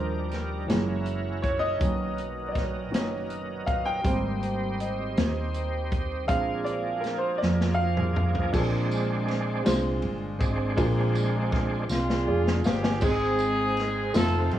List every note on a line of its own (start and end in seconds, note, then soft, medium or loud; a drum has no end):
0.00 0.65 D#2 medium
0.00 0.68 D#3 medium
0.00 0.64 F3 soft
0.00 0.64 G3 soft
0.00 0.67 G3 medium
0.00 0.64 D4 medium
0.00 0.68 D4 medium
0.00 0.70 G4 medium
0.00 0.67 A#4 medium
0.00 1.02 A#4 medium
0.00 0.70 C5 medium
0.31 snare soft
0.31 closed hi-hat soft
0.66 1.77 F#1 medium
0.66 1.17 E3 medium
0.66 1.80 F#3 medium
0.66 1.18 G#3 soft
0.66 1.18 A#3 medium
0.66 1.81 C#4 medium
0.66 1.81 E4 medium
0.66 1.80 A#4 medium
0.66 snare medium
0.66 closed hi-hat medium
1.05 closed hi-hat soft
1.42 1.47 C#5 medium
1.42 kick medium
1.42 closed hi-hat soft
1.59 2.50 D#5 loud
1.79 2.92 B1 medium
1.79 4.01 B2 medium
1.79 2.89 D#3 medium
1.79 4.01 F#3 medium
1.79 2.89 A#3 soft
1.79 2.90 C#4 medium
1.79 4.01 D#4 medium
1.79 4.02 A#4 medium
1.79 kick loud
1.79 closed hi-hat medium
2.18 closed hi-hat soft
2.48 2.55 D5 medium
2.48 2.88 D#5 medium
2.55 kick medium
2.55 snare soft
2.55 closed hi-hat soft
2.91 4.01 F#1 medium
2.91 3.25 D#3 soft
2.91 3.26 A#3 soft
2.91 3.26 C#4 medium
2.91 snare medium
2.91 closed hi-hat medium
3.30 closed hi-hat medium
3.66 3.86 F5 medium
3.66 kick medium
3.66 closed hi-hat soft
3.86 4.82 G5 loud
4.04 5.13 G#1 loud
4.04 5.13 G3 medium
4.04 5.13 A#3 medium
4.04 5.13 C4 medium
4.04 6.27 C4 medium
4.04 6.27 D#4 medium
4.04 6.26 G4 medium
4.04 6.26 C5 medium
4.04 kick loud
4.04 closed hi-hat medium
4.43 closed hi-hat medium
4.80 5.15 D#5 medium
4.80 closed hi-hat medium
5.17 6.29 D#2 medium
5.17 snare loud
5.17 closed hi-hat medium
5.54 closed hi-hat medium
5.92 kick medium
5.92 closed hi-hat soft
6.27 7.38 A#1 loud
6.27 8.51 F3 medium
6.27 7.37 G#3 medium
6.27 8.51 A#3 medium
6.27 7.37 C4 soft
6.27 6.37 C4 soft
6.27 7.37 D4 medium
6.27 8.51 G#4 medium
6.27 6.67 F5 loud
6.27 kick loud
6.27 closed hi-hat medium
6.37 8.54 D4 medium
6.64 6.73 D5 medium
6.64 closed hi-hat medium
7.00 7.22 A#4 medium
7.00 closed hi-hat soft
7.05 snare soft
7.18 7.40 C5 medium
7.38 7.47 D5 medium
7.42 8.50 F2 medium
7.42 snare medium
7.61 snare medium
7.74 8.48 F5 loud
7.97 mid tom medium
8.16 mid tom medium
8.35 floor tom medium
8.52 9.62 A#1 medium
8.52 9.61 A#2 medium
8.52 9.28 G#3 medium
8.52 9.62 G#3 medium
8.52 9.29 D4 medium
8.52 9.29 F4 medium
8.52 8.60 A4 medium
8.52 kick loud
8.52 crash medium
8.52 tambourine soft
8.56 9.63 C4 soft
8.56 9.63 D4 medium
8.56 9.32 A#4 medium
8.91 ride soft
8.91 tambourine soft
9.28 snare soft
9.28 ride soft
9.64 10.01 C2 medium
9.64 10.41 G#3 medium
9.64 10.41 D4 medium
9.64 10.41 F4 medium
9.64 10.42 C5 medium
9.64 snare loud
9.64 ride medium
9.64 tambourine medium
10.02 10.38 G1 medium
10.02 ride soft
10.39 10.75 G#1 medium
10.39 10.73 G#3 soft
10.39 10.73 C4 soft
10.39 10.74 D4 medium
10.39 kick medium
10.39 ride soft
10.39 tambourine soft
10.74 11.86 A#2 medium
10.74 11.84 G#3 medium
10.74 11.53 G#3 loud
10.74 11.85 C4 soft
10.74 11.85 D4 medium
10.74 11.53 D4 medium
10.74 11.54 F4 medium
10.74 kick loud
10.74 ride medium
10.78 11.86 A#1 loud
10.78 11.54 A#4 loud
10.78 tambourine medium
11.15 ride soft
11.15 tambourine soft
11.52 kick medium
11.52 snare soft
11.52 ride soft
11.90 12.25 C2 medium
11.90 12.99 G#3 medium
11.90 12.99 D4 medium
11.90 12.61 F4 medium
11.90 snare medium
11.90 tambourine medium
12.10 snare medium
12.27 12.62 F1 medium
12.27 12.63 G#4 medium
12.27 12.63 D5 medium
12.47 snare medium
12.64 13.00 G1 medium
12.64 13.03 G4 medium
12.64 12.83 C5 medium
12.64 12.83 F5 medium
12.64 snare loud
12.64 tambourine medium
12.82 13.19 D5 medium
12.82 13.19 G#5 medium
12.82 snare loud
13.01 14.11 G#1 loud
13.01 14.10 G#2 medium
13.01 14.15 G#3 medium
13.01 13.78 C4 medium
13.01 14.14 C4 medium
13.01 14.12 C4 medium
13.01 13.78 D#4 medium
13.01 14.15 D#4 medium
13.01 14.12 D#4 medium
13.01 13.78 G#4 medium
13.01 14.15 G#4 loud
13.01 kick loud
13.01 crash medium
13.01 tambourine soft
13.39 ride soft
13.39 tambourine soft
13.77 snare soft
13.77 ride soft
14.14 14.49 F1 medium
14.14 14.59 D#3 medium
14.14 14.59 F3 medium
14.14 14.59 A3 medium
14.14 14.59 C4 medium
14.14 14.59 D#4 medium
14.14 14.59 F4 medium
14.14 14.50 A4 loud
14.14 14.59 C5 medium
14.14 snare medium
14.14 ride medium
14.14 tambourine medium
14.51 14.59 G1 medium
14.51 14.59 G4 medium
14.51 ride soft